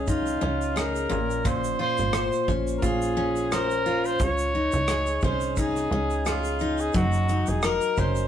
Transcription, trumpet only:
0.09 0.80 F4 medium
0.79 1.48 A#4 medium
1.47 1.80 C5 medium
1.81 2.53 C5 medium
2.78 2.86 A#4 medium
2.85 3.54 G#4 medium
3.53 4.07 A#4 loud
4.06 4.24 C5 medium
4.23 5.23 C#5 loud
5.24 5.61 C5 medium
5.59 6.28 G#4 medium
6.27 6.82 F4 medium
6.81 6.95 G#4 medium
6.96 7.50 F#4 medium
7.49 7.66 G#4 medium
7.64 8.00 A#4 loud
7.98 8.28 C5 medium

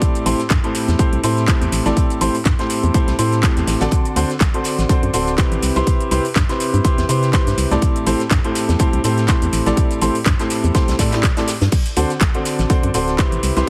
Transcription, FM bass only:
0.26 0.34 A1 loud
0.50 0.59 G2 loud
0.88 0.95 E2 medium
1.13 1.19 C2 loud
1.24 1.53 A2 medium
1.61 1.68 E2 medium
1.72 1.81 A1 medium
1.86 1.93 A1 medium
2.21 2.30 A1 loud
2.46 2.54 G2 loud
2.83 2.90 E2 medium
3.08 3.15 C2 medium
3.19 3.48 A2 medium
3.57 3.63 E2 medium
3.67 3.76 A1 medium
3.81 3.88 A1 medium
4.16 4.25 D2 loud
4.41 4.49 C2 loud
4.79 4.85 A1 medium
5.03 5.10 F#2 medium
5.14 5.43 D1 medium
5.52 5.58 A1 medium
5.63 5.71 C2 medium
5.76 5.83 C2 medium
6.11 6.20 C2 loud
6.36 6.44 G2 loud
6.74 6.80 G2 medium
6.98 7.05 E2 loud
7.09 7.39 C3 medium
7.47 7.54 G2 medium
7.58 7.66 C2 medium
7.71 7.78 C2 medium
8.07 8.15 A1 loud
8.31 8.39 G2 loud
8.69 8.76 E2 medium
8.93 9.00 C2 loud
9.04 9.34 A2 medium
9.42 9.49 E2 medium
9.53 9.61 A1 medium
9.66 9.73 A1 medium
10.02 10.10 A1 loud
10.26 10.34 G2 loud
10.64 10.71 E2 medium
10.88 10.95 C2 medium
10.99 11.29 A2 medium
11.62 11.68 G2 loud
11.97 12.05 D2 loud
12.21 12.29 C2 loud
12.59 12.66 A1 medium
12.83 12.90 F#2 loud
12.94 13.24 D1 medium
13.32 13.39 A1 medium
13.43 13.51 C2 medium
13.57 13.63 C2 medium

